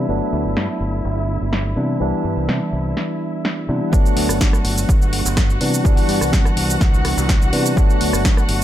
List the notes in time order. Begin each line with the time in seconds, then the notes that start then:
Already playing: E4 E5
0.08 G1 F#3 A3 B3 D4
0.33 D2
0.45 G1
0.56 G2, snare
0.80 G1
1.05 G1
1.41 G1
1.53 snare
1.76 C3 E3 G3 B3 D4
2.00 C2 E3 G3 B3 D4
2.13 muted fingered electric bass stroke
2.24 G2
2.37 C2
2.48 C3, snare
2.73 C2
2.97 snare
3.45 snare
3.68 C3 E3 G3 B3 D4
3.92 G1 F#3 A3 B3 D4 F#4 F#5, kick, shaker
4.06 shaker
4.17 D2, open hi-hat
4.29 G1, cross-stick, shaker
4.41 G2, kick, snare, shaker
4.53 cross-stick, shaker
4.65 G1, open hi-hat
4.78 shaker
4.89 G1, kick, shaker
5.02 shaker
5.13 open hi-hat
5.25 G1, shaker
5.37 kick, cross-stick, snare, shaker
5.50 shaker
5.60 C3 E3 G3 B3 D4, open hi-hat
5.74 shaker
5.84 C2 E3 G3 B3 D4, kick, shaker
5.97 muted fingered electric bass stroke, open hi-hat, shaker
6.09 G2, open hi-hat
6.21 C2, cross-stick, shaker
6.33 C3, kick, snare, shaker
6.45 cross-stick, shaker
6.57 C2, open hi-hat
6.70 shaker
6.81 C2, kick, snare, shaker
6.94 shaker
7.05 cross-stick, open hi-hat
7.17 C2, shaker
7.29 kick, snare, shaker
7.42 shaker
7.52 C3 E3 G3 B3 D4, open hi-hat
7.66 shaker
7.76 G1 F#3 A3 B3 D4, kick, shaker
7.90 shaker
8.01 D2, open hi-hat
8.13 G1, cross-stick, shaker
8.25 G2, kick, snare, shaker
8.37 cross-stick, shaker
8.49 G1, open hi-hat